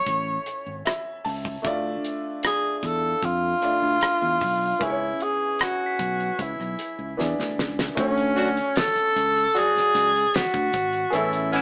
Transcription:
0.00 1.60 A3 medium
0.00 1.60 C#4 medium
0.00 1.61 E4 medium
0.00 0.82 C#5 loud
0.00 1.62 C#5 medium
0.00 1.61 G#5 soft
0.06 0.37 A1 medium
0.06 kick medium
0.06 closed hi-hat medium
0.46 closed hi-hat medium
0.66 0.81 G#1 medium
0.85 1.22 E5 medium
0.85 cross-stick loud
0.85 closed hi-hat medium
1.25 1.56 C#2 medium
1.25 1.62 A5 medium
1.25 open hi-hat medium
1.45 kick medium
1.62 1.95 D2 medium
1.62 3.57 A3 medium
1.62 3.58 D4 medium
1.62 3.59 F4 medium
1.62 3.58 E5 medium
1.62 kick loud
1.62 closed hi-hat medium
1.67 3.59 D5 medium
2.05 closed hi-hat medium
2.43 2.78 G#4 medium
2.43 cross-stick medium
2.43 closed hi-hat medium
2.78 2.88 G#4 medium
2.83 3.13 E2 medium
2.83 3.26 A4 loud
2.83 kick medium
2.83 cross-stick soft
2.83 closed hi-hat medium
3.23 3.53 F2 medium
3.23 4.85 F4 loud
3.23 kick medium
3.23 closed hi-hat medium
3.62 4.81 A3 soft
3.62 4.81 D4 soft
3.62 4.81 F4 soft
3.62 4.82 D5 medium
3.62 4.81 E5 soft
3.62 closed hi-hat medium
3.82 3.97 D2 medium
4.01 cross-stick loud
4.01 closed hi-hat medium
4.22 4.37 E2 medium
4.41 4.71 B1 medium
4.41 kick medium
4.41 open hi-hat medium
4.79 5.11 C#2 medium
4.79 7.13 B3 medium
4.79 7.14 C#4 medium
4.79 7.14 E4 medium
4.79 7.15 G#4 soft
4.79 kick loud
4.79 closed hi-hat medium
4.83 5.24 E4 medium
4.83 4.89 B4 medium
4.90 7.19 C#5 medium
5.20 5.64 G#4 medium
5.20 closed hi-hat medium
5.59 6.43 F#4 medium
5.59 6.52 G#6 medium
5.59 cross-stick medium
5.59 closed hi-hat medium
5.86 6.74 B6 soft
5.99 6.30 B1 medium
5.99 kick medium
5.99 closed hi-hat medium
6.20 closed hi-hat soft
6.39 6.54 C#2 medium
6.39 7.20 E4 medium
6.39 kick medium
6.39 closed hi-hat medium
6.60 6.74 B1 medium
6.60 cross-stick soft
6.79 closed hi-hat medium
6.99 7.14 C#2 medium
7.17 7.33 E2 medium
7.17 7.97 B3 medium
7.17 7.97 D4 medium
7.17 7.97 E4 soft
7.17 7.98 G#4 soft
7.17 7.98 D5 medium
7.17 snare soft
7.38 7.53 D2 medium
7.38 snare soft
7.58 7.88 C#2 medium
7.58 snare medium
7.79 snare medium
7.95 8.57 D2 loud
7.95 11.08 A3 medium
7.95 11.09 C#4 medium
7.95 11.10 F#4 medium
7.95 kick loud
7.95 closed hi-hat medium
7.95 shaker medium
8.00 8.80 C#4 loud
8.00 11.10 C#5 medium
8.17 closed hi-hat medium
8.17 shaker medium
8.36 8.49 F#3 medium
8.36 8.49 D4 medium
8.36 8.49 F#4 medium
8.36 closed hi-hat medium
8.36 shaker soft
8.56 closed hi-hat soft
8.56 shaker soft
8.76 9.60 A4 loud
8.76 9.67 A6 medium
8.76 snare loud
8.76 closed hi-hat medium
8.76 shaker medium
8.95 muted fingered electric bass stroke medium
8.95 closed hi-hat soft
8.95 shaker soft
9.16 9.46 C#2 medium
9.16 closed hi-hat medium
9.35 closed hi-hat medium
9.35 shaker medium
9.54 10.11 F#3 medium
9.54 10.11 D4 medium
9.54 10.11 F#4 medium
9.54 10.38 G#4 loud
9.54 closed hi-hat medium
9.54 shaker medium
9.75 muted fingered electric bass stroke soft
9.75 snare soft
9.75 closed hi-hat soft
9.75 shaker soft
9.94 10.25 C#2 loud
9.94 closed hi-hat medium
9.94 shaker medium
10.14 closed hi-hat medium
10.14 shaker medium
10.33 11.14 F#4 loud
10.33 11.25 B6 medium
10.33 snare loud
10.33 closed hi-hat medium
10.33 shaker medium
10.53 10.69 D2 medium
10.53 kick medium
10.53 closed hi-hat soft
10.53 shaker soft
10.73 11.04 G#1 medium
10.73 kick medium
10.73 closed hi-hat medium
10.93 closed hi-hat medium
10.93 shaker medium
11.10 11.62 A1 loud
11.10 11.62 B3 medium
11.10 11.62 C#4 medium
11.10 11.62 E4 medium
11.10 11.62 G#4 medium
11.10 closed hi-hat medium
11.10 shaker medium
11.15 11.56 E4 loud
11.15 11.62 A4 medium
11.32 closed hi-hat medium
11.32 shaker soft
11.52 11.62 E3 medium
11.52 11.62 B3 medium
11.52 11.62 C#4 medium
11.52 11.62 E4 loud
11.52 closed hi-hat medium
11.52 shaker soft

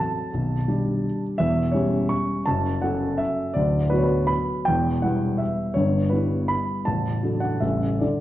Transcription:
0.00 0.30 F#3 soft
0.00 0.30 C4 soft
0.00 0.30 A4 soft
0.00 1.22 A5 medium
0.33 0.67 B0 soft
0.33 0.68 B1 soft
0.68 1.36 G3 soft
0.68 1.36 D4 soft
0.68 1.36 G4 soft
1.38 1.73 E1 soft
1.38 1.73 E2 soft
1.38 1.73 E5 medium
1.72 2.43 G3 soft
1.72 2.43 C#4 soft
1.72 2.43 G4 soft
1.72 2.10 C#5 medium
2.09 2.46 C#6 medium
2.46 2.82 F#1 medium
2.46 2.82 F#2 soft
2.46 2.82 A5 medium
2.82 3.53 F#3 soft
2.82 3.53 C#4 soft
2.82 3.53 A4 soft
2.82 3.19 F#5 medium
3.18 3.55 E5 medium
3.54 3.90 D1 soft
3.54 3.91 D2 soft
3.54 3.90 D5 medium
3.90 4.63 F#3 soft
3.90 4.64 B3 soft
3.90 4.64 F#4 soft
3.90 3.98 B4 medium
3.97 4.05 C#5 medium
4.04 4.29 B4 medium
4.27 4.66 B5 medium
4.65 5.03 E1 soft
4.65 5.03 E2 medium
4.65 5.03 G5 medium
5.02 5.73 G3 soft
5.02 5.73 B3 soft
5.02 5.73 E4 soft
5.02 5.40 F#5 medium
5.38 5.75 E5 medium
5.74 6.12 G1 soft
5.74 6.12 G2 soft
5.74 6.12 C#5 medium
6.10 6.84 G3 soft
6.10 6.84 B3 soft
6.10 6.84 E4 soft
6.10 6.50 B4 soft
6.48 6.86 B5 medium
6.85 7.22 A0 soft
6.85 7.22 A1 soft
6.85 7.41 A5 medium
7.23 7.58 F#3 soft
7.23 7.59 D4 soft
7.23 7.59 A4 soft
7.40 7.61 F#5 medium
7.60 8.01 A0 soft
7.60 8.00 A1 soft
7.60 7.98 G3 soft
7.60 7.98 C#4 soft
7.60 7.99 A4 soft
7.60 8.01 E5 medium
8.00 8.21 D3 soft
8.00 8.21 D4 soft
8.00 8.21 A4 soft
8.00 8.21 D5 soft

